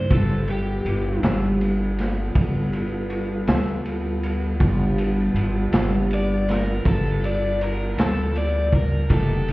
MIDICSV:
0, 0, Header, 1, 7, 480
1, 0, Start_track
1, 0, Tempo, 749064
1, 71, Time_signature, 12, 3, 24, 8
1, 6104, End_track
2, 0, Start_track
2, 0, Title_t, "Overdriven electric guitar"
2, 0, Program_c, 0, 29
2, 0, Note_on_c, 0, 72, 83
2, 75, Note_off_c, 0, 72, 0
2, 88, Note_on_c, 0, 69, 78
2, 313, Note_off_c, 0, 69, 0
2, 325, Note_on_c, 0, 67, 97
2, 784, Note_off_c, 0, 67, 0
2, 3935, Note_on_c, 0, 74, 114
2, 4157, Note_off_c, 0, 74, 0
2, 4171, Note_on_c, 0, 70, 91
2, 4395, Note_off_c, 0, 70, 0
2, 4409, Note_on_c, 0, 69, 107
2, 4633, Note_off_c, 0, 69, 0
2, 4649, Note_on_c, 0, 74, 84
2, 4874, Note_off_c, 0, 74, 0
2, 4891, Note_on_c, 0, 70, 82
2, 5115, Note_off_c, 0, 70, 0
2, 5131, Note_on_c, 0, 69, 90
2, 5355, Note_off_c, 0, 69, 0
2, 5367, Note_on_c, 0, 74, 112
2, 5593, Note_off_c, 0, 74, 0
2, 5608, Note_on_c, 0, 70, 104
2, 5834, Note_off_c, 0, 70, 0
2, 5852, Note_on_c, 0, 69, 84
2, 6076, Note_off_c, 0, 69, 0
2, 6104, End_track
3, 0, Start_track
3, 0, Title_t, "Saxophone section"
3, 0, Program_c, 1, 65
3, 74, Note_on_c, 1, 65, 70
3, 77, Note_on_c, 1, 59, 72
3, 5718, Note_off_c, 1, 59, 0
3, 5718, Note_off_c, 1, 65, 0
3, 5827, Note_on_c, 1, 63, 81
3, 5827, Note_on_c, 1, 67, 74
3, 6104, Note_off_c, 1, 63, 0
3, 6104, Note_off_c, 1, 67, 0
3, 6104, End_track
4, 0, Start_track
4, 0, Title_t, "Clean electric guitar"
4, 0, Program_c, 2, 27
4, 66, Note_on_c, 2, 55, 73
4, 70, Note_on_c, 2, 59, 77
4, 73, Note_on_c, 2, 65, 84
4, 77, Note_on_c, 2, 69, 85
4, 212, Note_off_c, 2, 55, 0
4, 215, Note_off_c, 2, 59, 0
4, 216, Note_off_c, 2, 65, 0
4, 218, Note_off_c, 2, 69, 0
4, 790, Note_on_c, 2, 69, 67
4, 794, Note_on_c, 2, 65, 67
4, 798, Note_on_c, 2, 59, 67
4, 799, Note_on_c, 2, 55, 55
4, 934, Note_off_c, 2, 69, 0
4, 936, Note_off_c, 2, 65, 0
4, 938, Note_off_c, 2, 59, 0
4, 939, Note_off_c, 2, 55, 0
4, 2228, Note_on_c, 2, 69, 72
4, 2233, Note_on_c, 2, 65, 71
4, 2236, Note_on_c, 2, 55, 63
4, 2236, Note_on_c, 2, 59, 73
4, 2374, Note_off_c, 2, 69, 0
4, 2376, Note_off_c, 2, 65, 0
4, 2377, Note_off_c, 2, 55, 0
4, 2378, Note_off_c, 2, 59, 0
4, 3670, Note_on_c, 2, 69, 68
4, 3674, Note_on_c, 2, 65, 82
4, 3677, Note_on_c, 2, 59, 70
4, 3681, Note_on_c, 2, 55, 68
4, 3815, Note_off_c, 2, 69, 0
4, 3817, Note_off_c, 2, 65, 0
4, 3818, Note_off_c, 2, 59, 0
4, 3820, Note_off_c, 2, 55, 0
4, 5114, Note_on_c, 2, 69, 80
4, 5115, Note_on_c, 2, 65, 60
4, 5119, Note_on_c, 2, 59, 64
4, 5123, Note_on_c, 2, 55, 56
4, 5257, Note_off_c, 2, 69, 0
4, 5258, Note_off_c, 2, 65, 0
4, 5260, Note_off_c, 2, 59, 0
4, 5262, Note_off_c, 2, 55, 0
4, 5829, Note_on_c, 2, 53, 85
4, 5833, Note_on_c, 2, 57, 84
4, 5834, Note_on_c, 2, 63, 78
4, 5836, Note_on_c, 2, 67, 87
4, 5975, Note_off_c, 2, 53, 0
4, 5977, Note_off_c, 2, 57, 0
4, 5978, Note_off_c, 2, 63, 0
4, 5979, Note_off_c, 2, 67, 0
4, 6104, End_track
5, 0, Start_track
5, 0, Title_t, "Tonewheel organ"
5, 0, Program_c, 3, 16
5, 72, Note_on_c, 3, 55, 61
5, 73, Note_on_c, 3, 59, 58
5, 74, Note_on_c, 3, 54, 59
5, 75, Note_on_c, 3, 69, 61
5, 295, Note_off_c, 3, 55, 0
5, 296, Note_off_c, 3, 69, 0
5, 299, Note_off_c, 3, 59, 0
5, 301, Note_on_c, 3, 65, 73
5, 303, Note_on_c, 3, 55, 60
5, 303, Note_on_c, 3, 69, 68
5, 306, Note_on_c, 3, 59, 64
5, 313, Note_off_c, 3, 54, 0
5, 2921, Note_off_c, 3, 55, 0
5, 2921, Note_off_c, 3, 65, 0
5, 2922, Note_off_c, 3, 69, 0
5, 2923, Note_off_c, 3, 59, 0
5, 2946, Note_on_c, 3, 65, 65
5, 2946, Note_on_c, 3, 81, 74
5, 2947, Note_on_c, 3, 55, 65
5, 2947, Note_on_c, 3, 59, 64
5, 5804, Note_off_c, 3, 65, 0
5, 5804, Note_off_c, 3, 81, 0
5, 5805, Note_off_c, 3, 55, 0
5, 5805, Note_off_c, 3, 59, 0
5, 5832, Note_on_c, 3, 78, 58
5, 5833, Note_on_c, 3, 58, 68
5, 5834, Note_on_c, 3, 52, 72
5, 5836, Note_on_c, 3, 55, 67
5, 6073, Note_off_c, 3, 52, 0
5, 6073, Note_off_c, 3, 58, 0
5, 6073, Note_off_c, 3, 78, 0
5, 6075, Note_off_c, 3, 55, 0
5, 6080, Note_on_c, 3, 65, 77
5, 6081, Note_on_c, 3, 63, 80
5, 6082, Note_on_c, 3, 69, 74
5, 6083, Note_on_c, 3, 55, 67
5, 6104, Note_off_c, 3, 55, 0
5, 6104, Note_off_c, 3, 63, 0
5, 6104, Note_off_c, 3, 65, 0
5, 6104, Note_off_c, 3, 69, 0
5, 6104, End_track
6, 0, Start_track
6, 0, Title_t, "Upright bass"
6, 0, Program_c, 4, 32
6, 0, Note_on_c, 4, 43, 97
6, 68, Note_on_c, 4, 31, 102
6, 77, Note_off_c, 4, 43, 0
6, 524, Note_off_c, 4, 31, 0
6, 547, Note_on_c, 4, 31, 92
6, 770, Note_off_c, 4, 31, 0
6, 788, Note_on_c, 4, 31, 98
6, 1484, Note_off_c, 4, 31, 0
6, 1507, Note_on_c, 4, 31, 82
6, 2204, Note_off_c, 4, 31, 0
6, 2228, Note_on_c, 4, 38, 91
6, 2947, Note_on_c, 4, 31, 113
6, 2957, Note_off_c, 4, 38, 0
6, 3404, Note_off_c, 4, 31, 0
6, 3424, Note_on_c, 4, 31, 101
6, 3648, Note_off_c, 4, 31, 0
6, 3664, Note_on_c, 4, 31, 98
6, 4362, Note_off_c, 4, 31, 0
6, 4389, Note_on_c, 4, 31, 89
6, 5085, Note_off_c, 4, 31, 0
6, 5107, Note_on_c, 4, 38, 99
6, 5832, Note_on_c, 4, 29, 110
6, 5841, Note_off_c, 4, 38, 0
6, 6104, Note_off_c, 4, 29, 0
6, 6104, End_track
7, 0, Start_track
7, 0, Title_t, "Drums"
7, 67, Note_on_c, 9, 51, 89
7, 69, Note_on_c, 9, 36, 112
7, 131, Note_off_c, 9, 51, 0
7, 133, Note_off_c, 9, 36, 0
7, 305, Note_on_c, 9, 51, 58
7, 369, Note_off_c, 9, 51, 0
7, 549, Note_on_c, 9, 51, 66
7, 613, Note_off_c, 9, 51, 0
7, 789, Note_on_c, 9, 51, 82
7, 796, Note_on_c, 9, 38, 101
7, 853, Note_off_c, 9, 51, 0
7, 860, Note_off_c, 9, 38, 0
7, 1031, Note_on_c, 9, 51, 61
7, 1096, Note_off_c, 9, 51, 0
7, 1272, Note_on_c, 9, 51, 66
7, 1279, Note_on_c, 9, 38, 30
7, 1336, Note_off_c, 9, 51, 0
7, 1343, Note_off_c, 9, 38, 0
7, 1508, Note_on_c, 9, 36, 113
7, 1508, Note_on_c, 9, 51, 86
7, 1572, Note_off_c, 9, 51, 0
7, 1573, Note_off_c, 9, 36, 0
7, 1749, Note_on_c, 9, 51, 55
7, 1813, Note_off_c, 9, 51, 0
7, 1986, Note_on_c, 9, 51, 58
7, 2050, Note_off_c, 9, 51, 0
7, 2226, Note_on_c, 9, 51, 84
7, 2233, Note_on_c, 9, 38, 110
7, 2290, Note_off_c, 9, 51, 0
7, 2297, Note_off_c, 9, 38, 0
7, 2470, Note_on_c, 9, 51, 62
7, 2534, Note_off_c, 9, 51, 0
7, 2712, Note_on_c, 9, 51, 63
7, 2776, Note_off_c, 9, 51, 0
7, 2950, Note_on_c, 9, 36, 104
7, 2951, Note_on_c, 9, 51, 86
7, 3014, Note_off_c, 9, 36, 0
7, 3015, Note_off_c, 9, 51, 0
7, 3192, Note_on_c, 9, 51, 67
7, 3256, Note_off_c, 9, 51, 0
7, 3433, Note_on_c, 9, 51, 69
7, 3497, Note_off_c, 9, 51, 0
7, 3669, Note_on_c, 9, 51, 83
7, 3676, Note_on_c, 9, 38, 113
7, 3733, Note_off_c, 9, 51, 0
7, 3740, Note_off_c, 9, 38, 0
7, 3913, Note_on_c, 9, 51, 62
7, 3977, Note_off_c, 9, 51, 0
7, 4155, Note_on_c, 9, 51, 67
7, 4162, Note_on_c, 9, 38, 33
7, 4219, Note_off_c, 9, 51, 0
7, 4226, Note_off_c, 9, 38, 0
7, 4392, Note_on_c, 9, 36, 117
7, 4394, Note_on_c, 9, 51, 100
7, 4456, Note_off_c, 9, 36, 0
7, 4458, Note_off_c, 9, 51, 0
7, 4638, Note_on_c, 9, 51, 68
7, 4702, Note_off_c, 9, 51, 0
7, 4877, Note_on_c, 9, 51, 66
7, 4941, Note_off_c, 9, 51, 0
7, 5116, Note_on_c, 9, 51, 89
7, 5123, Note_on_c, 9, 38, 103
7, 5180, Note_off_c, 9, 51, 0
7, 5187, Note_off_c, 9, 38, 0
7, 5355, Note_on_c, 9, 51, 65
7, 5419, Note_off_c, 9, 51, 0
7, 5592, Note_on_c, 9, 36, 83
7, 5592, Note_on_c, 9, 51, 61
7, 5656, Note_off_c, 9, 36, 0
7, 5656, Note_off_c, 9, 51, 0
7, 5832, Note_on_c, 9, 36, 105
7, 5833, Note_on_c, 9, 51, 86
7, 5897, Note_off_c, 9, 36, 0
7, 5897, Note_off_c, 9, 51, 0
7, 6076, Note_on_c, 9, 51, 62
7, 6104, Note_off_c, 9, 51, 0
7, 6104, End_track
0, 0, End_of_file